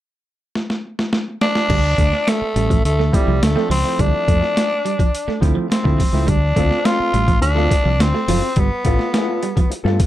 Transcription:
0.55 snare
0.70 snare
0.99 snare
1.13 snare
1.41 D4, snare
1.55 snare
1.70 D2 G3, kick, crash
1.98 D2 A3, kick, closed hi-hat
2.13 muted clean electric guitar stroke, snare
2.27 A3, muted clean electric guitar stroke, snare, closed hi-hat
2.42 muted fingered electric bass stroke
2.56 A1 G3, closed hi-hat
2.70 F3, kick, closed hi-hat
2.85 D2 A3, closed hi-hat
2.99 A3, snare
3.12 F3 G3 A3 C4 E4, muted clean electric guitar stroke, kick, snare, closed hi-hat
3.28 C2 F3
3.42 D2 A3, muted clean electric guitar stroke, snare, closed hi-hat
3.55 F3 A3 C4 D4, snare
3.70 C#2 F3 C4, open hi-hat
3.84 F3 A3 C4 E4
3.99 D2 G3 D4, kick, closed hi-hat
4.28 F2 A3, kick, closed hi-hat
4.42 muted clean electric guitar stroke, snare
4.57 muted clean electric guitar stroke, snare, closed hi-hat
4.85 G3, closed hi-hat
4.99 F3, kick, closed hi-hat
5.15 closed hi-hat
5.28 A3, muted fingered electric bass stroke, snare
5.41 D2 F3 A3 C4 E4, muted clean electric guitar stroke, kick, snare, closed hi-hat
5.55 F3
5.70 C4, muted clean electric guitar stroke, snare, closed hi-hat
5.84 D3 F3 A3 C4 E4, kick, snare
5.98 F3, kick, open hi-hat
6.13 C#2 F3 A3 C4 E4, snare
6.27 D2 G3 D4, kick, closed hi-hat
6.56 D2 A3 C4 F4 A4, kick, closed hi-hat
6.71 muted clean electric guitar stroke, snare
6.84 C4 F4 A4, muted clean electric guitar stroke, snare, closed hi-hat
7.00 muted fingered electric bass stroke
7.13 A1 G3, muted clean electric guitar stroke, closed hi-hat
7.27 F3, muted clean electric guitar stroke, kick, closed hi-hat
7.41 D2 D4, muted clean electric guitar stroke, closed hi-hat
7.55 A3 C4 F4 A4, snare
7.70 muted clean electric guitar stroke, kick, snare, closed hi-hat
7.84 C2 F3, muted clean electric guitar stroke
7.99 D2 C4, muted clean electric guitar stroke, snare, closed hi-hat
8.14 A3, muted clean electric guitar stroke, snare
8.28 F#1 F3 C4 F4 A4, open hi-hat
8.42 muted clean electric guitar stroke
8.56 G1 G3 B3, kick, closed hi-hat
8.84 A1 A3 B3 F4 A4, kick, closed hi-hat
8.99 muted clean electric guitar stroke, snare
9.13 A#3 E4 G#4, muted clean electric guitar stroke, snare, closed hi-hat
9.24 B3 F4 A4
9.42 G3, muted clean electric guitar stroke, closed hi-hat
9.56 F3, muted clean electric guitar stroke, kick, closed hi-hat
9.70 muted clean electric guitar stroke, closed hi-hat
9.84 G2 A3 B3 F4 A4, snare
9.99 muted clean electric guitar stroke, kick, snare, closed hi-hat

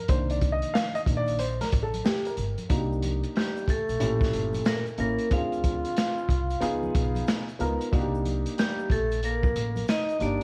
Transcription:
0.08 C2 D#3 A#3 D4 C5, kick, closed hi-hat, shaker
0.30 D5, closed hi-hat, shaker
0.41 kick, closed hi-hat, high conga, low conga, shaker
0.52 D#5
0.62 closed hi-hat, shaker
0.74 F5, snare, high conga, shaker
0.95 D#5, closed hi-hat, shaker
1.06 A#1 D#3 A#3 D4, kick, closed hi-hat, low conga, shaker
1.17 D5
1.28 closed hi-hat, shaker
1.39 C5, closed hi-hat, shaker
1.61 A#4, snare, closed hi-hat, high conga, shaker
1.72 A1, kick, closed hi-hat, shaker
1.82 A4
1.93 closed hi-hat, high conga, shaker
2.04 G4, snare, shaker
2.25 A#4, closed hi-hat, shaker
2.37 G1, closed hi-hat, low conga, shaker
2.58 closed hi-hat, high conga, shaker
2.69 C2 A#3 D4 D#4 F#4, kick, closed hi-hat, shaker
2.77 G4
2.93 shaker
3.03 closed hi-hat, high conga, shaker
3.24 closed hi-hat, shaker
3.36 G3 G4, snare, closed hi-hat, shaker
3.57 closed hi-hat, shaker
3.68 A3 A4, kick, closed hi-hat, low conga, shaker
3.89 A#1, closed hi-hat, shaker
3.99 A1 A#2 C#4 E4 G4, closed hi-hat, shaker
4.21 kick, snare, high conga, shaker
4.33 G1, closed hi-hat, shaker
4.53 closed hi-hat, high conga, shaker
4.65 A#3 A#4, snare, closed hi-hat, shaker
4.86 closed hi-hat, shaker
4.98 A1 A#3 C#4 E4 A#4, closed hi-hat, low conga, shaker
5.19 closed hi-hat, shaker
5.30 D2 C4 D4 D#4 F4 G#4 F5, kick, closed hi-hat, shaker
5.38 F4
5.52 closed hi-hat, shaker
5.64 kick, closed hi-hat, high conga, shaker
5.85 closed hi-hat, shaker
5.96 snare, closed hi-hat, shaker
6.18 shaker
6.29 C2, kick, closed hi-hat, low conga, shaker
6.50 closed hi-hat, shaker
6.60 C#2 B3 D#4 F4 G#4, closed hi-hat, shaker
6.83 high conga, shaker
6.95 B1, kick, closed hi-hat, shaker
7.15 closed hi-hat, high conga, shaker
7.27 snare, closed hi-hat, shaker
7.48 closed hi-hat, shaker
7.59 C#2 B3 D#4 F4 A#4, closed hi-hat, low conga, shaker
7.81 closed hi-hat, shaker
7.92 C2 A#3 D4 D#4 F#4, kick, closed hi-hat, shaker
8.00 G4
8.15 shaker
8.25 closed hi-hat, high conga, shaker
8.46 closed hi-hat, shaker
8.58 G3 G4, snare, closed hi-hat, shaker
8.79 shaker
8.90 A#1 A3 A4, kick, closed hi-hat, low conga, shaker
9.11 closed hi-hat, shaker
9.23 A#3 A#4, closed hi-hat, shaker
9.43 kick, high conga, shaker
9.56 A1, closed hi-hat, shaker
9.76 closed hi-hat, high conga, shaker
9.88 D#4 D#5, snare, closed hi-hat, shaker
10.09 closed hi-hat, shaker
10.19 G1 A#3 D4 D#4 G4 D5, closed hi-hat, low conga, shaker

